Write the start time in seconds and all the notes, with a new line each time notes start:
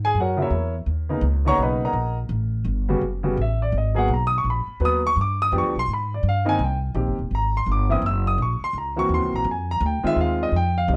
Already playing: G#2
0.05 G#4 G#5
0.14 F#2
0.20 F#4 A#4 C#5 F#5
0.37 C#3 F#3 A#3 E4
0.42 E4 A#4 C#5 E5
0.50 E2
0.86 D#2
1.09 C#3 A#3 B3 D#4
1.21 C#2
1.45 C#3 A#3 B3 D#4 C#5 F#5 A#5 C#6
1.58 B1
1.62 B4 D#5 F#5 B5
1.85 A#4 D#5 F#5 A#5
1.93 A#1
2.29 A1
2.65 G1
2.89 C#3 G3 B3 F#4
3.01 F#1
3.23 C#3 G3 B3 F#4
3.37 A1
3.41 E5
3.62 D5
3.72 G#1
3.78 D#5
3.95 F#3 A#3 B3 G#4 F#5
4.08 B1
4.14 A#5
4.27 D#6
4.38 C#6
4.44 A#1
4.50 B5
4.67 muted upright bass stroke
4.80 D#2 F#3 A#3 B3 B4
4.85 D#6
5.07 C#6
5.16 G2
5.21 D6
5.42 D#6
5.52 F2 F3 B3 D4 G4
5.58 C#6
5.63 D2
5.75 B1 C6
5.88 G#2
5.93 B5
6.14 D5
6.23 G2
6.29 F5
6.45 D#3 A#3 C4 D#4 G#5
6.59 C2
6.64 G5
6.94 A#1 D#3 A#3 C4 G4
7.07 G1
7.19 D#1
7.31 G#1
7.35 A#5
7.57 C6
7.66 G1
7.72 D6
7.89 E3 A#3 C4 E4 D#6
8.02 F#1
8.06 E6
8.27 D#6
8.38 A#1
8.42 C#6
8.61 C6, muted upright bass stroke
8.73 C#2
8.78 A#5
8.96 E3 A#3 C4 F#4 C#6
9.09 D#2
9.14 C6
9.21 C#2
9.33 A#1 A#5
9.44 F2
9.51 G#5
9.71 A#5
9.80 D2
9.86 G5
10.03 D#3 G#3 C4 F4 E5, muted upright bass stroke
10.16 D#2
10.21 F5
10.43 D#5
10.52 F2
10.56 G5
10.78 F5
10.88 C2 D#3 A#3 C4 G4
10.94 D#5